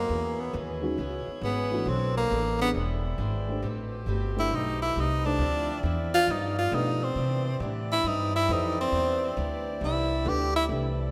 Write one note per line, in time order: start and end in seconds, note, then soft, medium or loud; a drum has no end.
0.00 2.70 B2 medium
0.00 0.41 A#3 medium
0.08 0.52 E2 medium
0.08 0.40 E3 soft
0.08 0.41 B3 soft
0.08 0.41 C#4 medium
0.08 1.85 E4 medium
0.08 1.85 G#4 medium
0.08 0.42 G#4 soft
0.08 2.72 C#5 medium
0.40 0.54 B3 medium
0.53 0.97 D#2 loud
0.53 0.85 E3 medium
0.53 0.85 B3 medium
0.53 0.86 C#4 medium
0.53 0.86 G#4 medium
0.81 0.96 D#3 medium
0.81 0.96 G#3 medium
0.81 0.96 C#4 medium
0.81 0.97 F#4 medium
0.97 1.25 C#2 medium
0.97 1.29 E3 medium
0.97 1.30 B3 medium
0.97 1.30 C#4 medium
0.97 1.30 G#4 medium
1.27 muted upright bass stroke soft
1.41 1.85 G#1 medium
1.41 1.73 E3 medium
1.41 1.74 B3 medium
1.41 1.90 B3 medium
1.41 1.74 C#4 medium
1.41 1.75 G#4 medium
1.71 1.85 E3 medium
1.71 1.85 A3 medium
1.71 1.85 D4 medium
1.71 1.85 F#4 medium
1.85 2.29 B1 medium
1.85 2.17 B3 soft
1.85 2.17 C4 medium
1.85 2.73 D4 medium
1.85 2.18 D4 soft
1.85 2.73 A4 medium
1.85 2.18 A4 soft
1.89 2.19 C#5 medium
2.17 2.58 A#3 medium
2.30 2.73 A1 loud
2.30 2.62 B3 medium
2.30 2.62 D4 medium
2.30 2.63 A4 medium
2.30 2.63 C#5 medium
2.59 2.73 B3 medium
2.59 2.70 B3 loud
2.59 2.73 C4 medium
2.59 2.73 D4 medium
2.59 2.74 G#4 medium
2.74 3.17 E1 medium
2.74 3.06 E3 soft
2.74 3.62 C4 medium
2.74 3.06 D4 soft
2.74 3.62 E4 medium
2.74 3.62 G#4 medium
2.74 3.07 G#4 soft
2.74 3.07 C5 medium
2.74 3.62 D5 medium
3.18 3.61 G#1 medium
3.18 3.50 E3 medium
3.18 3.50 D4 medium
3.18 3.51 G#4 medium
3.18 3.51 C5 medium
3.48 3.61 A3 medium
3.48 3.62 D4 medium
3.48 3.62 G4 medium
3.48 3.62 C5 medium
3.62 4.05 A1 medium
3.62 5.22 B2 medium
3.62 3.94 A3 medium
3.62 3.94 C4 medium
3.62 5.22 G4 medium
3.62 3.95 G4 soft
3.62 5.22 A4 medium
3.62 3.95 B4 medium
3.62 5.22 C5 medium
4.06 4.49 G1 medium
4.06 4.38 A3 medium
4.06 4.39 C4 medium
4.06 4.39 G4 medium
4.06 4.39 B4 medium
4.36 4.50 A3 medium
4.36 4.50 D4 medium
4.36 4.57 E4 loud
4.36 4.50 G4 medium
4.36 4.51 B4 medium
4.51 4.94 B1 medium
4.51 4.82 A3 soft
4.51 4.83 C4 soft
4.51 4.83 G4 medium
4.51 4.84 B4 soft
4.55 4.81 D#4 medium
4.82 5.02 E4 loud
4.95 5.38 C2 medium
4.95 5.26 A3 medium
4.95 5.27 C4 medium
4.95 5.27 G4 medium
4.95 5.27 B4 medium
5.00 5.27 D#4 medium
5.25 5.38 A3 medium
5.25 5.38 D4 medium
5.25 5.84 D4 loud
5.25 5.38 G4 medium
5.25 5.39 C5 medium
5.38 5.82 D2 medium
5.38 5.70 D3 soft
5.38 5.71 F3 soft
5.38 6.27 C4 medium
5.38 5.71 C4 soft
5.38 6.27 E4 medium
5.38 5.72 E4 medium
5.38 6.27 F4 medium
5.38 7.14 D5 medium
5.83 6.26 E2 medium
5.83 6.15 D3 medium
5.83 6.15 F3 medium
5.83 6.16 C4 medium
5.83 6.16 E4 medium
6.15 6.33 F4 loud
6.27 6.59 G2 soft
6.27 6.71 G2 medium
6.27 6.59 F3 medium
6.27 7.15 B3 medium
6.27 6.60 B3 soft
6.27 6.60 D4 medium
6.27 7.15 F4 medium
6.27 7.15 G4 medium
6.31 6.58 D#4 loud
6.58 6.76 F4 loud
6.71 7.02 G2 medium
6.71 7.15 B2 medium
6.71 7.03 F3 medium
6.71 7.16 A3 medium
6.71 7.03 B3 medium
6.71 7.16 D4 medium
6.71 7.04 D4 medium
6.71 7.05 D#4 medium
6.71 7.16 G4 medium
6.71 7.17 B4 medium
7.03 7.61 C4 medium
7.15 7.59 C3 medium
7.15 7.47 C3 medium
7.15 7.48 E3 medium
7.15 7.49 B3 medium
7.15 10.66 C4 medium
7.15 10.66 E4 medium
7.15 10.66 G4 medium
7.15 10.66 D5 medium
7.19 7.49 D4 medium
7.60 8.03 A2 medium
7.60 7.91 C3 medium
7.60 7.92 E3 medium
7.60 7.92 B3 medium
7.60 7.93 D4 medium
7.92 8.09 E4 loud
8.04 8.47 G2 medium
8.04 8.35 C3 medium
8.04 8.36 E3 medium
8.04 8.36 B3 medium
8.04 8.37 D4 medium
8.04 8.35 D#4 loud
8.36 8.54 E4 loud
8.48 8.91 F2 medium
8.48 8.79 C3 medium
8.48 8.80 E3 medium
8.48 8.80 B3 medium
8.48 8.81 D4 medium
8.48 8.80 D#4 medium
8.48 9.16 E4 medium
8.48 9.17 A4 medium
8.48 9.16 B4 medium
8.48 9.17 C5 medium
8.81 9.34 C4 loud
8.92 9.35 E2 medium
8.92 9.24 C3 soft
8.92 9.24 E3 soft
8.92 9.25 B3 medium
8.92 9.25 D4 medium
9.36 9.80 D2 loud
9.36 9.68 C3 medium
9.36 9.68 E3 medium
9.36 9.68 B3 medium
9.36 9.69 D4 medium
9.80 10.24 C2 medium
9.80 10.12 C3 soft
9.80 10.12 E3 soft
9.80 10.13 B3 soft
9.80 10.13 D4 medium
9.85 10.30 E4 medium
10.24 10.68 D2 medium
10.24 10.55 C3 medium
10.24 10.56 E3 medium
10.24 10.67 A3 medium
10.24 10.56 B3 medium
10.24 10.67 D4 medium
10.24 10.57 D4 medium
10.24 10.68 G4 medium
10.24 10.68 B4 medium
10.29 10.55 G4 loud
10.56 10.64 E4 loud
10.68 11.11 C2 medium
10.68 11.00 C3 soft
10.68 11.00 E3 soft
10.68 11.11 A3 medium
10.68 11.01 A3 soft
10.68 11.11 C4 medium
10.68 11.11 D4 soft
10.68 11.01 D4 soft
10.68 11.11 E4 medium
10.68 11.11 G4 medium
10.68 11.11 A4 medium
10.68 11.11 B4 medium
10.68 11.11 D5 medium